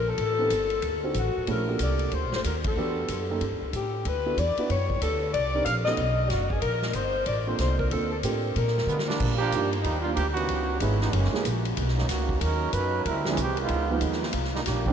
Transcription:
Already playing: upright bass A#1
0.09 saxophone section A4
0.18 upright bass A1, kick, ride
0.39 grand piano B3 C4 D#4 G4 A4
0.50 upright bass G1, kick, hi-hat pedal, ride
0.70 ride
0.82 upright bass D2, kick, ride
1.04 grand piano C4 D4 D#4 F#4 C5
1.14 upright bass A1, saxophone section F#4, kick, hi-hat pedal, ride
1.26 upright bass F#1
1.37 upright bass D1
1.47 upright bass A#1, grand piano A3 C#4 E4 F#4 G#4, saxophone section A#4, kick, ride
1.68 grand piano A#3 D4 F4 G4 A4
1.79 upright bass C2, saxophone section D5, kick, hi-hat pedal, ride
1.99 ride
2.12 upright bass D2, saxophone section C5, kick, ride
2.24 upright bass A#1
2.32 upright bass G1, saxophone section C5, snare
2.44 upright bass D#2, saxophone section A#4, kick, hi-hat pedal, ride
2.64 saxophone section A4, kick, ride
2.76 upright bass E2, grand piano B3 D4 F#4 G4 A4
3.08 upright bass F#2, kick, hi-hat pedal, ride
3.30 grand piano A#3 C#4 D#4 G4 A4
3.41 upright bass G2, kick, ride
3.51 upright bass D#2
3.62 upright bass C#2
3.73 upright bass A2, saxophone section G4, kick, hi-hat pedal, ride
4.05 upright bass D2, saxophone section B4, kick, ride
4.26 grand piano B3 D4 E4 F#4 A4
4.37 upright bass E2, saxophone section D5, kick, hi-hat pedal, ride
4.57 grand piano B3 D4 E4 F#4 B4, muted upright bass stroke, ride
4.70 upright bass F#2, saxophone section C#5, kick, ride
4.90 kick
5.01 upright bass D2, saxophone section A4, kick, hi-hat pedal, ride
5.34 upright bass C2, saxophone section D5, kick, ride
5.55 grand piano C4 D4 D#4 G4 A#4
5.65 upright bass A#1, saxophone section F5, kick, hi-hat pedal, ride
5.85 grand piano B3 C#4 D#4 F#4 A4, saxophone section D#5, snare
5.97 upright bass B1, kick, ride
6.30 upright bass F#1, saxophone section F#4, kick, snare, hi-hat pedal, ride
6.50 saxophone section G#4, kick
6.62 upright bass A#1, saxophone section A#4, kick, ride
6.82 snare
6.93 upright bass G1, saxophone section C5, kick, hi-hat pedal, ride
7.26 upright bass A1, saxophone section D5, kick, ride
7.47 grand piano A#3 C4 D4 F4 A4, saxophone section C5
7.59 upright bass C2, saxophone section C5, kick, snare, hi-hat pedal, ride
7.79 saxophone section A#4, kick
7.91 upright bass D2, grand piano A#3 C4 D4 F4 A4, saxophone section A4, kick, ride
8.12 saxophone section A4
8.23 upright bass A2, grand piano C4 D4 F4 A4 A#4, saxophone section G4, kick, hi-hat pedal, ride
8.56 upright bass A#2, saxophone section A#4, kick, ride
8.67 snare
8.78 snare
8.87 upright bass D3, trombone section D3 F3 G#3 B3, hi-hat pedal
8.99 snare
9.07 trombone section F3 G3 A#3 D4, snare
9.20 upright bass A#2, kick, crash
9.38 trombone section F3 A#3 D4 G4
9.52 upright bass G2, grand piano G3 A#3 D4 D#4 F4, kick, hi-hat pedal, ride
9.73 ride
9.81 upright bass D#2, trombone section F3 G3 A#3 D#4, kick, ride
10.02 trombone section G3 A#3 D4 F4, grand piano G3 A#3 D4 D#4
10.06 grand piano F4
10.13 upright bass D2, trombone section F3 A#3 D4 G4, kick, hi-hat pedal, ride
10.33 trombone section E3 B3 C#4 F#4, ride
10.48 upright bass C#2, kick, ride
10.80 upright bass G#1, trombone section G#3 B3 C#4 E4, grand piano G#3 B3 C#4 D#4 E4, kick, hi-hat pedal, ride
11.01 trombone section E3 G#3 B3 D#4, snare
11.13 upright bass F#1, trombone section E3 G#3 A#3 C#4, kick, ride
11.24 snare
11.33 grand piano G#3 A#3 C#4 E4 G#4, muted upright bass stroke, snare
11.44 upright bass A#1, kick, hi-hat pedal, ride
11.65 ride
11.77 upright bass B1, kick, ride
11.88 snare
11.97 trombone section F#3 A#3 C#4 D#4, snare
12.08 upright bass C#2, trombone section D#3 A#3 C#4 F#4, kick, snare, hi-hat pedal, ride
12.29 kick
12.40 upright bass D#2, trombone section F#3 C#4 D#4 A#4, kick, ride
12.72 upright bass F#2, trombone section F#3 C#4 D#4 B4, kick, hi-hat pedal, ride
13.05 upright bass D2, trombone section G3 C4 E4 A#4, kick, ride
13.25 grand piano F3 G#3 C4 D4 E4, trombone section F3 C4 D4 G#4, snare
13.37 upright bass C2, trombone section E3 G#3 C4 G4, kick, hi-hat pedal, ride
13.57 trombone section G#3 B3 D#4 F4, ride
13.68 upright bass C#2, kick, ride
13.90 grand piano F3 G#3 A#3 B3 D#4
14.01 upright bass D#2, kick, hi-hat pedal, ride
14.12 snare
14.23 snare
14.33 upright bass C2, kick, ride
14.44 snare
14.54 trombone section D3 G3 A#3 D#4, snare
14.65 upright bass A#1, trombone section D#3 A#3 D4 G4, kick, snare, hi-hat pedal, ride
14.86 grand piano D#3 G3 A#3 C4 D4, kick

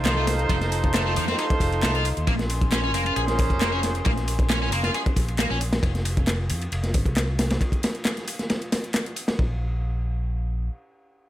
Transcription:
Already playing: fingered electric bass C2, brass ensemble D#4 F4 A4 C5, analog synth pad A4 D#5 F5 C6
0.05 distorted electric guitar F3, snare, clap, closed hi-hat, ride
0.17 distorted electric guitar A3
0.27 snare, open hi-hat, ride
0.39 closed hi-hat
0.49 fingered electric bass F1, distorted electric guitar F3, kick, closed hi-hat, ride
0.61 snare, closed hi-hat
0.72 open hi-hat, ride
0.84 kick, closed hi-hat
0.94 distorted electric guitar A3, snare, clap, closed hi-hat, ride
1.06 distorted electric guitar A3, snare
1.16 fingered electric bass F2, distorted electric guitar F3, open hi-hat, ride
1.28 distorted electric guitar C4, brass ensemble D#4 F4 A4 C5, snare, closed hi-hat
1.38 distorted electric guitar D#4, closed hi-hat, ride
1.50 kick, closed hi-hat
1.60 fingered electric bass F1, kick, open hi-hat, ride
1.73 closed hi-hat, ride
1.83 fingered electric bass C2, distorted electric guitar A3, snare, clap, open hi-hat, ride
1.94 distorted electric guitar F4, snare, closed hi-hat
2.05 open hi-hat, ride
2.17 fingered electric bass D#2, closed hi-hat
2.27 fingered electric bass A#1, distorted electric guitar A#3, analog synth pad C#4 A#4 G#5 C6, kick, closed hi-hat, ride
2.39 snare, closed hi-hat
2.50 open hi-hat, ride
2.61 kick, closed hi-hat
2.72 distorted electric guitar C#4, snare, clap, closed hi-hat, ride
2.84 distorted electric guitar C#4
2.94 fingered electric bass F1, distorted electric guitar A#3, open hi-hat, ride
3.06 brass ensemble C#4 G#4 A#4 C5, distorted electric guitar F4, closed hi-hat, ride
3.16 fingered electric bass A#1, distorted electric guitar G#4, closed hi-hat, ride
3.28 snare, closed hi-hat
3.39 kick, open hi-hat, ride
3.50 fingered electric bass F1, kick, closed hi-hat
3.61 distorted electric guitar A#3, snare, clap, closed hi-hat, ride
3.73 distorted electric guitar C#4
3.83 snare, open hi-hat, ride
3.95 closed hi-hat
4.05 fingered electric bass A#1, distorted electric guitar A#3, kick, closed hi-hat, ride
4.17 snare, closed hi-hat
4.28 open hi-hat, ride
4.39 kick, closed hi-hat
4.49 distorted electric guitar C#4, snare, clap, closed hi-hat, ride
4.62 distorted electric guitar C#4, snare
4.72 fingered electric bass F1, distorted electric guitar A#3, open hi-hat, ride
4.83 distorted electric guitar F4, snare, closed hi-hat
4.94 distorted electric guitar G#4, closed hi-hat, ride
5.06 kick, closed hi-hat
5.16 fingered electric bass A#1, kick, open hi-hat, ride
5.28 closed hi-hat, ride
5.39 distorted electric guitar A#3, snare, clap, open hi-hat, ride
5.50 fingered electric bass A#1, distorted electric guitar C#4, snare
5.61 open hi-hat, ride
5.73 snare, closed hi-hat, ride
5.83 fingered electric bass F1, kick, closed hi-hat, ride
5.95 snare, closed hi-hat
6.05 open hi-hat, ride
6.17 kick, closed hi-hat
6.27 snare, clap, closed hi-hat, ride
6.50 fingered electric bass F2, open hi-hat, ride
6.62 closed hi-hat, ride
6.72 fingered electric bass F1, closed hi-hat, ride
6.83 snare, closed hi-hat
6.94 kick, open hi-hat, ride
7.05 fingered electric bass C2, kick, closed hi-hat
7.17 snare, clap, closed hi-hat, ride
7.39 snare, open hi-hat, ride
7.50 snare, closed hi-hat, ride
7.61 kick, closed hi-hat, ride
7.72 kick, closed hi-hat
7.83 snare, open hi-hat, ride
7.95 closed hi-hat
8.05 snare, clap, closed hi-hat, ride
8.17 snare, closed hi-hat
8.28 open hi-hat, ride
8.39 snare, closed hi-hat
8.50 snare, closed hi-hat, ride
8.62 closed hi-hat
8.72 snare, open hi-hat, ride
8.84 closed hi-hat
8.94 snare, clap, open hi-hat, ride
9.06 closed hi-hat
9.16 open hi-hat, ride
9.28 snare, closed hi-hat, ride
9.39 fingered electric bass A#1, kick

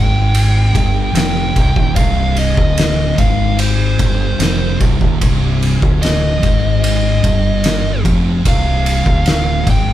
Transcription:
Already playing: fingered electric bass G#1, distorted electric guitar G#2, lead electric guitar G5
0.35 ride
0.74 fingered electric bass G1, distorted electric guitar G2, kick, ride
1.14 fingered electric bass F1, distorted electric guitar F2, lead electric guitar G5, snare, ride
1.54 fingered electric bass C1, distorted electric guitar C2, kick, ride
1.74 fingered electric bass D#1, distorted electric guitar D#2, kick
1.94 fingered electric bass C1, distorted electric guitar C2, lead electric guitar F5, kick, ride
2.37 lead electric guitar D#5, ride
2.55 fingered electric bass D1, distorted electric guitar D2, kick
2.78 snare, ride
3.17 fingered electric bass G#1, distorted electric guitar G#2, lead electric guitar F5, kick, ride
3.59 lead electric guitar C5, ride
3.98 fingered electric bass G1, distorted electric guitar G2, kick, ride
4.38 fingered electric bass F1, distorted electric guitar F2, snare, ride
4.79 fingered electric bass C1, distorted electric guitar C2, kick, ride
4.99 fingered electric bass D#1, distorted electric guitar D#2, kick
5.20 fingered electric bass C1, distorted electric guitar C2, kick, ride
5.62 ride
5.82 fingered electric bass D1, distorted electric guitar D2, kick
6.02 lead electric guitar D#5, snare, ride
6.42 fingered electric bass G#1, distorted electric guitar G#2, kick, ride
6.84 lead electric guitar D#5, ride
7.23 fingered electric bass G1, distorted electric guitar G2, kick, ride
7.64 snare, ride
8.05 fingered electric bass F1, distorted electric guitar F2, kick, ride
8.44 fingered electric bass C1, distorted electric guitar C2, kick, ride
8.48 lead electric guitar F5
8.86 ride
9.05 fingered electric bass D1, distorted electric guitar D2, kick
9.26 snare, ride
9.67 fingered electric bass G#1, distorted electric guitar G#2, lead electric guitar G5, kick, snare, ride

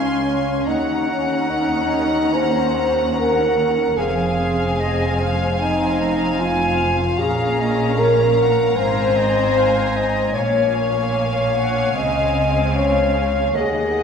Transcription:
Already playing: double bass section C#2, cello section C#2, viola section C#4, french horn section C#4, flute F5, violin section G#5 C6
0.28 flute F5
0.67 cello section D#2, double bass section D#2, viola section C#4, french horn section D#4, violin section F#5 A#5, flute F#5
1.08 french horn section C#4
1.50 french horn section D#4
2.35 french horn section C5
3.16 french horn section A#4, flute F#5
3.98 double bass section F1, cello section F2, viola section C4, french horn section G#4, flute F5, violin section F5 G#5
4.80 flute D#5
5.20 flute F5
5.59 french horn section D#4, flute G#5
6.01 flute A#5
6.39 french horn section F4, flute G#5
7.19 double bass section A#1, cello section A#2, viola section C#4, french horn section G#4, flute F5, violin section A#5
7.61 flute D#5
7.97 french horn section A#4, flute C#5
8.39 flute F#5
8.76 double bass section G#1, cello section G#2, viola section C4, french horn section C5, flute F5, violin section G#5
9.17 flute D#5
9.57 flute F5
9.96 flute D#5
10.34 double bass section A#1, cello section A#2, viola section A#3, french horn section C#5, flute C#5, violin section F5 G#5
11.15 flute F5
11.55 flute F#5
11.94 double bass section C#2, cello section C#3, viola section C4, french horn section D#5, flute G#5
12.74 french horn section C#5, flute F5
13.55 double bass section D#2, cello section D#3, viola section A#3, french horn section G#4, flute D#5, violin section D#5 F#5

